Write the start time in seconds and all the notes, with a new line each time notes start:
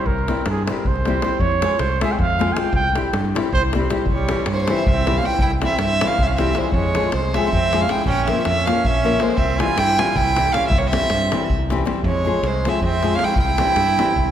0.06 C2 A#4, davul low
0.18 davul high
0.28 G3 C4 E4 G4, davul high
0.37 davul high
0.46 G2, davul high
0.50 G#4
0.65 G3 C5, davul high
0.70 C4 E4 G4 A#4
0.77 davul high
0.85 C2 C5, davul low
0.96 davul high
1.05 G3 C4 E4 G4, davul high
1.22 G3 C4 E4 G4, davul high
1.39 F2 C#5, davul low
1.52 davul high
1.62 G#3 C4 F4 G#4, davul high
1.71 davul high
1.79 C2 C5, davul high
2.01 G#3 C4 F4 G#4 E5, davul high
2.11 G5, davul high
2.19 F2 F5, davul low
2.30 davul high
2.39 G#3 C4 F4 G#4, davul high
2.53 G#3 C4 G#5, davul high
2.57 F4 G#4 G5
2.65 davul high
2.73 C2 G5, davul low
2.84 davul high
2.96 G3 C4 E4 G4, davul high
3.05 davul high
3.13 G2, davul high
3.25 davul high
3.35 G3 C4 E4 G4, davul high
3.45 davul high
3.52 C2 C5, davul low
3.63 davul high
3.73 G3 C4 E4 G4, davul high
3.82 davul high
3.90 G3 C4 E4 G4, davul high
3.98 davul high
4.05 C2, davul low
4.12 G3 C#5
4.18 davul high
4.29 E3 G3 C4 E4 G4, davul high
4.37 davul high
4.46 G2, davul high
4.51 G3 A#3 C5 C#5
4.62 G#3 C5
4.67 E3 G3 C4 E4 G4, davul high
4.73 C4 E5, davul high
4.86 C2 E5, davul low
4.91 C4
5.05 E3 G3 C4 E4 G4, davul high
5.15 C#4 F5, davul high
5.22 E3 G3 C4 E4 G4 G5
5.29 E4, davul high
5.39 C2 E4 G5, davul low
5.51 davul high
5.61 E3 G3 C4 E4 G4, davul high
5.65 E5
5.70 davul high
5.79 G2, davul high
5.83 C4 E5
6.01 E3 G3 C4 C#4 E4 G4, davul high
6.07 F5
6.11 davul high
6.18 C2 C4, davul low
6.23 C#4 E5
6.27 F5
6.33 C4 E5
6.38 E3 G3 C4 E4 G4, davul high
6.47 davul high
6.54 E3 G3 G#3 C4 E4 G4, davul high
6.58 C5
6.64 davul high
6.72 F2 G#3 C#5, davul low
6.84 davul high
6.94 F3 G#3 C4 F4 G#4, davul high
7.03 davul high
7.12 C2 G#3 C5, davul high
7.34 F3 G#3 C4 F4 G#4 E5, davul high
7.44 davul high
7.50 F2 C4 E5, davul low
7.73 F3 G#3 C4 F4 G#4, davul high
7.80 C#4 F5, davul high
7.88 F3 G#3 C4 E4 F4 G#4 G5, davul high
7.97 davul high
8.06 A#1 C#4 G5, davul low
8.17 davul high
8.27 F3 A#3 C#4 F4 A#4 E5, davul high
8.31 C4
8.36 davul high
8.44 F2 E5, davul high
8.49 C#4
8.56 davul high
8.66 F3 A#3 C#4 F4 A#4 F5, davul high
8.70 C#4
8.76 davul high
8.84 A#1 C#4 E5, davul low
9.04 F3 A#3 C#4 F4 A#4
9.12 davul high
9.20 F3 G#3 A#3 C#4 F4 A#4 C5, davul high
9.28 davul high
9.35 C2 C4 E5, davul low
9.50 davul high
9.59 E3 G3 C4 E4 F4 G#5, davul high
9.63 G4
9.69 davul high
9.77 G2 E4 G5, davul high
9.98 E3 G3 C4 E4 F4 G4 G#5, davul high
10.15 C2 E4 G5, davul low
10.36 E3 G3 C4 E4 G4, davul high
10.45 davul high
10.52 E3 G3 C4 C#4 E4 F5, davul high
10.57 G4
10.62 davul high
10.68 C2 C4 E5, davul low
10.78 A#3 C#5, davul high
10.87 C4 E5
10.92 E3 G3 C4 E4 G4, davul high
11.02 davul high
11.10 G2, davul high
11.32 E3 G3 C4 E4 G4, davul high
11.41 davul high
11.49 C2, davul low
11.70 E3 G3 C4 E4 G4, davul high
11.78 davul high
11.85 E3 G3 C4 E4 G4, davul high
11.96 davul high
12.03 F2 G#3, davul low
12.07 C#5
12.15 davul high
12.25 F3 G#3 C4 F4 G#4
12.34 davul high
12.43 C2 G#3 C5, davul high
12.65 F3 G#3 C4 F4 G#4 E5, davul high
12.74 davul high
12.82 F2 C4 E5, davul low
13.03 F3 G#3 C4 F4 G#4, davul high
13.11 C#4, davul high
13.15 F5, davul high
13.19 F3 G#3 C4 F4 G#4
13.24 E4 G5, davul high
13.36 C2 E4, davul low
13.41 G5
13.48 davul high
13.58 E3 G3 C4 E4 G4, davul high
13.67 davul high
13.76 G2, davul high
13.88 davul high
13.98 E3 G3 C4 E4 G4, davul high
14.08 davul high
14.16 C2, davul low
14.28 davul high